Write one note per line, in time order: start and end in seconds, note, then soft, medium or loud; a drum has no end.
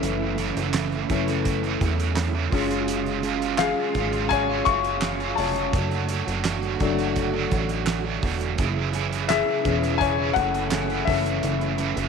0.00 0.53 F#1 loud
0.00 0.36 F#2 medium
0.00 0.37 C#3 medium
0.00 5.70 C#3 medium
0.00 0.37 E3 medium
0.00 0.70 E3 medium
0.00 2.49 E3 medium
0.00 0.37 A3 medium
0.00 0.70 A3 soft
0.00 2.50 A3 medium
0.00 0.39 C#4 medium
0.00 0.71 C#4 medium
0.00 2.49 E4 medium
0.00 0.38 A4 medium
0.00 1.78 A4 medium
0.00 1.77 E5 medium
0.00 closed hi-hat medium
0.38 1.09 F#2 medium
0.38 1.10 C#3 medium
0.38 1.08 E3 medium
0.38 1.09 A3 loud
0.38 1.10 C#4 medium
0.38 1.10 A4 loud
0.38 closed hi-hat medium
0.56 1.06 F#1 medium
0.56 closed hi-hat medium
0.74 snare loud
0.74 clap medium
0.74 closed hi-hat loud
0.92 closed hi-hat soft
1.09 1.77 F#1 loud
1.09 1.63 E3 medium
1.09 1.42 E3 medium
1.09 1.42 A3 medium
1.09 1.62 A3 medium
1.09 1.42 C#4 medium
1.09 1.62 C#4 medium
1.09 1.62 A4 medium
1.09 kick medium
1.09 closed hi-hat medium
1.28 snare soft
1.28 closed hi-hat soft
1.45 kick medium
1.45 closed hi-hat medium
1.63 2.35 F#2 medium
1.63 2.34 C#3 medium
1.63 2.34 E3 medium
1.63 2.34 A3 medium
1.63 2.34 C#4 medium
1.63 2.33 A4 medium
1.63 closed hi-hat soft
1.81 2.49 E2 medium
1.81 kick medium
1.81 closed hi-hat medium
2.00 closed hi-hat medium
2.16 snare loud
2.16 clap medium
2.16 closed hi-hat medium
2.34 2.51 F#2 medium
2.34 2.52 C#3 medium
2.34 2.53 E3 medium
2.34 2.53 A3 medium
2.34 2.52 C#4 medium
2.34 2.52 A4 medium
2.52 3.73 F#1 medium
2.52 3.22 F#2 medium
2.52 3.23 C#3 medium
2.52 3.24 F#3 medium
2.52 5.70 G#3 medium
2.52 5.34 G#3 medium
2.52 5.34 C#4 medium
2.52 3.23 C#4 medium
2.52 5.70 F4 medium
2.52 5.34 F4 medium
2.52 3.24 F4 medium
2.52 3.24 G#4 loud
2.52 kick medium
2.52 open hi-hat medium
2.71 closed hi-hat medium
2.88 closed hi-hat loud
3.06 closed hi-hat soft
3.23 3.95 F#2 medium
3.23 3.95 C#3 medium
3.23 3.95 F#3 medium
3.23 3.95 C#4 medium
3.23 3.96 F4 loud
3.23 3.96 G#4 loud
3.23 closed hi-hat medium
3.42 closed hi-hat medium
3.58 4.27 G#4 medium
3.58 4.32 F5 loud
3.58 snare loud
3.58 clap medium
3.58 closed hi-hat loud
3.95 4.63 G#1 medium
3.95 4.49 F#3 medium
3.95 4.48 C#4 medium
3.95 4.48 F4 medium
3.95 4.48 G#4 medium
3.95 kick medium
3.95 closed hi-hat medium
4.13 closed hi-hat medium
4.29 4.65 C#5 medium
4.29 4.67 G#5 loud
4.29 kick medium
4.29 closed hi-hat medium
4.49 5.21 F#2 medium
4.49 5.20 C#3 medium
4.49 5.21 F#3 medium
4.49 5.19 C#4 medium
4.49 5.19 F4 medium
4.49 5.19 G#4 medium
4.65 5.34 F#1 loud
4.65 5.35 F5 medium
4.65 5.39 C#6 loud
4.65 kick medium
4.65 closed hi-hat medium
4.84 closed hi-hat medium
5.02 snare loud
5.02 clap medium
5.02 closed hi-hat loud
5.20 5.74 F#2 medium
5.20 5.74 C#3 medium
5.20 5.73 F#3 medium
5.20 5.74 C#4 medium
5.20 5.74 F4 medium
5.20 5.74 G#4 medium
5.20 closed hi-hat soft
5.35 5.71 F1 medium
5.35 7.48 C#5 medium
5.35 7.46 A5 medium
5.35 open hi-hat medium
5.56 closed hi-hat medium
5.73 6.23 F#1 loud
5.73 8.56 D3 medium
5.73 8.56 F#3 medium
5.73 6.09 F#3 medium
5.73 8.56 A3 medium
5.73 6.09 A3 medium
5.73 6.10 D4 medium
5.73 8.55 F#4 medium
5.73 6.10 A4 loud
5.73 kick loud
5.73 closed hi-hat medium
5.91 closed hi-hat soft
6.09 6.79 F#3 medium
6.09 6.79 A3 medium
6.09 6.80 D4 medium
6.09 6.81 A4 medium
6.09 closed hi-hat medium
6.27 6.77 F#1 medium
6.27 closed hi-hat soft
6.45 snare loud
6.45 clap medium
6.45 closed hi-hat loud
6.63 closed hi-hat soft
6.80 7.48 F#1 loud
6.80 7.33 F#3 medium
6.80 7.83 F#3 medium
6.80 7.33 A3 medium
6.80 7.84 A3 medium
6.80 7.84 D4 medium
6.80 7.33 D4 medium
6.80 7.32 A4 medium
6.80 kick medium
6.80 closed hi-hat medium
6.98 snare soft
6.98 closed hi-hat soft
7.16 kick medium
7.16 closed hi-hat medium
7.33 8.05 F#3 medium
7.33 8.04 A3 medium
7.33 8.04 D4 medium
7.33 8.03 A4 medium
7.51 8.19 A1 loud
7.51 kick medium
7.51 closed hi-hat medium
7.69 closed hi-hat medium
7.87 snare loud
7.87 clap medium
7.87 closed hi-hat loud
8.04 8.58 F#3 medium
8.04 8.58 A3 medium
8.04 8.58 D4 medium
8.04 8.58 A4 medium
8.23 8.56 E1 medium
8.23 kick loud
8.23 open hi-hat medium
8.41 closed hi-hat medium
8.58 9.44 F#1 loud
8.58 8.93 F#2 medium
8.58 8.93 C#3 medium
8.58 12.08 C#3 medium
8.58 8.93 E3 loud
8.58 12.08 E3 medium
8.58 8.94 C#4 medium
8.58 8.94 E4 loud
8.58 12.08 E4 medium
8.58 11.06 G#4 medium
8.58 8.94 G#4 loud
8.58 kick loud
8.58 closed hi-hat loud
8.93 9.66 F#2 medium
8.93 9.66 C#3 medium
8.93 9.64 E3 loud
8.93 9.65 C#4 medium
8.93 9.66 E4 medium
8.93 9.66 G#4 medium
8.93 closed hi-hat medium
9.13 closed hi-hat medium
9.28 9.97 G#4 medium
9.28 10.03 E5 loud
9.28 snare loud
9.28 clap medium
9.28 closed hi-hat loud
9.64 10.33 E1 loud
9.64 10.68 E3 medium
9.64 10.18 E3 medium
9.64 10.68 C#4 medium
9.64 10.18 C#4 medium
9.64 10.17 E4 medium
9.64 10.17 G#4 medium
9.64 kick medium
9.64 closed hi-hat medium
9.84 snare soft
9.84 closed hi-hat medium
9.98 10.34 C#5 medium
9.98 10.36 G#5 loud
9.98 kick medium
9.98 closed hi-hat medium
10.18 10.90 F#2 medium
10.18 10.90 C#3 medium
10.18 10.90 E3 medium
10.18 10.90 C#4 medium
10.18 10.90 E4 medium
10.18 10.88 G#4 medium
10.33 11.04 F#1 medium
10.33 11.04 A3 medium
10.33 11.09 F#5 loud
10.33 kick medium
10.33 closed hi-hat medium
10.54 closed hi-hat medium
10.71 snare loud
10.71 clap medium
10.71 closed hi-hat medium
10.90 11.06 F#2 medium
10.90 11.06 C#3 medium
10.90 11.07 E3 medium
10.90 11.07 C#4 medium
10.90 11.08 E4 medium
10.90 11.08 G#4 medium
10.90 closed hi-hat soft
11.05 11.41 F#1 loud
11.05 11.77 F#2 medium
11.05 11.78 C#3 medium
11.05 12.08 E3 medium
11.05 11.78 E3 medium
11.05 12.08 A3 medium
11.05 11.79 A3 medium
11.05 12.08 C#4 medium
11.05 11.79 C#4 medium
11.05 11.79 A4 medium
11.05 12.08 E5 medium
11.05 kick loud
11.05 open hi-hat medium
11.09 12.08 A4 medium
11.26 closed hi-hat medium
11.43 11.93 F#1 loud
11.43 closed hi-hat medium
11.61 closed hi-hat soft
11.78 12.08 F#2 medium
11.78 12.08 C#3 medium
11.78 12.08 E3 medium
11.78 12.08 A3 loud
11.78 12.08 C#4 loud
11.78 12.08 A4 loud
11.78 closed hi-hat medium
11.96 12.08 F#1 medium
11.96 closed hi-hat medium